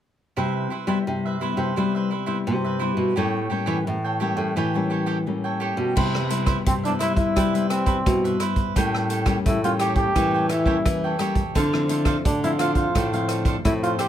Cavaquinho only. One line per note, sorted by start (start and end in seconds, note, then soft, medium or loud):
0.37 0.69 E4 medium
0.37 0.71 B4 medium
0.37 0.70 C5 medium
0.37 0.71 E5 medium
0.70 0.86 E4 soft
0.70 0.87 B4 soft
0.70 0.87 C5 soft
0.70 0.87 E5 medium
0.87 0.97 E4 medium
0.87 0.98 B4 medium
0.87 0.98 C5 medium
0.87 0.98 E5 medium
1.25 1.41 B4 soft
1.25 1.40 C5 soft
1.25 1.41 E5 soft
1.41 1.58 E4 medium
1.41 1.57 B4 medium
1.41 1.58 C5 medium
1.41 1.56 E5 medium
1.57 1.75 B4 soft
1.57 1.75 C5 soft
1.57 1.74 E5 soft
1.76 1.93 E4 soft
1.76 1.93 B4 medium
1.76 1.93 C5 medium
1.76 1.94 E5 medium
1.95 2.10 B4 soft
1.95 2.10 C5 soft
1.95 2.11 E5 soft
2.10 2.25 E4 soft
2.10 2.26 B4 soft
2.10 2.25 C5 soft
2.10 2.26 E5 soft
2.26 2.37 E4 medium
2.26 2.37 B4 medium
2.26 2.37 C5 medium
2.26 2.37 E5 medium
2.64 2.80 B4 soft
2.64 2.79 C5 soft
2.64 2.81 E5 soft
2.79 3.14 E4 medium
2.79 3.15 B4 medium
2.79 3.15 C5 medium
2.79 3.15 E5 medium
3.16 3.48 G4 medium
3.16 3.49 A4 medium
3.16 3.50 C#5 medium
3.16 3.50 G5 medium
3.50 3.65 G4 soft
3.50 3.65 A4 soft
3.50 3.66 C#5 soft
3.50 3.66 G5 soft
3.66 3.77 G4 medium
3.66 3.77 A4 medium
3.66 3.77 C#5 medium
3.66 3.77 G5 medium
4.04 4.20 A4 soft
4.04 4.20 C#5 soft
4.04 4.20 G5 soft
4.20 4.37 G4 medium
4.20 4.37 A4 medium
4.20 4.36 C#5 medium
4.20 4.35 G5 medium
4.36 4.55 A4 soft
4.36 4.54 C#5 soft
4.36 4.54 G5 soft
4.56 4.72 G4 medium
4.56 4.73 A4 medium
4.56 4.73 C#5 medium
4.56 4.73 G5 medium
4.74 4.89 A4 soft
4.74 4.90 C#5 soft
4.74 4.90 G5 soft
4.90 5.05 G4 soft
4.90 5.05 A4 soft
4.90 5.06 C#5 soft
4.90 5.06 G5 soft
5.06 5.17 G4 medium
5.06 5.17 A4 medium
5.06 5.17 C#5 medium
5.06 5.17 G5 medium
5.44 5.59 A4 soft
5.44 5.60 C#5 soft
5.44 5.60 G5 soft
5.60 5.94 G4 medium
5.60 5.95 A4 medium
5.60 5.95 C#5 medium
5.60 5.95 G5 medium
5.96 6.28 E4 medium
5.96 6.29 B4 medium
5.96 6.29 C5 medium
5.96 6.30 E5 medium
6.29 6.45 E4 soft
6.29 6.46 B4 soft
6.29 6.45 C5 soft
6.29 6.46 E5 medium
6.46 6.57 E4 medium
6.46 6.57 B4 medium
6.46 6.57 C5 medium
6.46 6.57 E5 medium
6.84 6.99 B4 soft
6.84 6.99 C5 soft
6.84 7.00 E5 soft
6.99 7.16 E4 medium
6.99 7.16 B4 medium
6.99 7.17 C5 medium
6.99 7.15 E5 medium
7.16 7.34 B4 soft
7.16 7.34 C5 soft
7.16 7.34 E5 soft
7.36 7.52 E4 medium
7.36 7.53 B4 medium
7.36 7.53 C5 medium
7.36 7.53 E5 medium
7.54 7.69 B4 soft
7.54 7.69 C5 soft
7.54 7.70 E5 soft
7.70 7.85 E4 soft
7.70 7.85 B4 soft
7.70 7.85 C5 soft
7.70 7.86 E5 soft
7.86 7.96 E4 medium
7.86 7.97 B4 medium
7.86 7.97 C5 medium
7.86 7.97 E5 medium
8.24 8.40 B4 soft
8.24 8.39 C5 soft
8.24 8.40 E5 soft
8.40 8.74 E4 medium
8.40 8.75 B4 medium
8.40 8.74 C5 medium
8.40 8.75 E5 medium
8.76 9.08 G4 medium
8.76 9.09 A4 medium
8.76 9.09 C#5 medium
8.76 9.10 G5 medium
9.09 9.24 G4 soft
9.09 9.25 A4 soft
9.09 9.25 C#5 medium
9.09 9.25 G5 soft
9.25 9.36 G4 medium
9.25 9.36 A4 medium
9.25 9.36 C#5 medium
9.25 9.37 G5 medium
9.64 9.79 A4 soft
9.64 9.79 C#5 soft
9.64 9.80 G5 soft
9.79 9.96 G4 medium
9.79 9.97 A4 medium
9.79 9.96 C#5 medium
9.79 9.95 G5 medium
9.96 10.14 A4 soft
9.96 10.14 C#5 soft
9.96 10.13 G5 soft
10.15 10.32 G4 medium
10.15 10.32 A4 medium
10.15 10.32 C#5 medium
10.15 10.33 G5 medium
10.34 10.49 A4 soft
10.34 10.50 C#5 soft
10.34 10.50 G5 soft
10.50 10.65 G4 soft
10.50 10.65 A4 soft
10.50 10.66 C#5 medium
10.50 10.66 G5 soft
10.66 10.76 G4 medium
10.66 10.76 A4 medium
10.66 10.77 C#5 medium
10.66 10.77 G5 medium
11.04 11.19 A4 soft
11.04 11.20 C#5 soft
11.04 11.20 G5 soft
11.19 11.54 G4 medium
11.19 11.54 A4 medium
11.19 11.54 C#5 medium
11.19 11.55 G5 medium
11.55 11.88 D4 medium
11.55 11.89 A4 medium
11.55 11.89 C5 medium
11.55 11.90 F5 medium
11.89 12.04 D4 soft
11.89 12.05 A4 medium
11.89 12.05 C5 soft
11.89 12.05 F5 soft
12.05 12.16 D4 medium
12.05 12.16 A4 medium
12.05 12.16 C5 medium
12.05 12.16 F5 medium
12.44 12.59 A4 soft
12.44 12.59 C5 soft
12.44 12.59 F5 soft
12.59 12.76 D4 medium
12.59 12.76 A4 medium
12.59 12.76 C5 medium
12.59 12.75 F5 medium
12.76 12.94 A4 soft
12.76 12.93 C5 soft
12.76 12.93 F5 soft
12.95 13.11 D4 medium
12.95 13.12 A4 medium
12.95 13.12 C5 medium
12.95 13.12 F5 medium
13.14 13.28 A4 soft
13.14 13.29 C5 soft
13.14 13.29 F5 soft
13.29 13.44 D4 soft
13.29 13.44 A4 soft
13.29 13.45 C5 soft
13.29 13.45 F5 medium
13.45 13.55 D4 medium
13.45 13.56 A4 medium
13.45 13.56 C5 medium
13.45 13.56 F5 medium
13.83 13.98 A4 soft
13.83 13.99 C5 soft
13.83 13.99 F5 soft
13.99 14.08 D4 medium
13.99 14.08 A4 medium
13.99 14.08 C5 medium
13.99 14.08 F5 medium